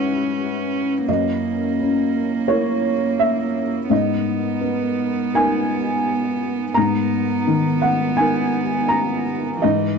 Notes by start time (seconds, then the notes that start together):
Already playing: G#2 C#4 E4 B4 C#5 E5 F#5
1.07 F#2 A#3 A#4 D#5
1.80 C#4
2.48 E4 A#4 C#5
3.19 E5
3.89 G#2 B3 D#4 A#4 D#5
4.61 B3
5.34 D#4 A#4 G#5
6.74 G#2 B3 A#4 A#5
6.78 D#4
7.47 D#3
7.82 F#5
8.17 D#4 A#4 G#5
8.88 A#5
9.61 G#2 E3 E4 G#4 D#5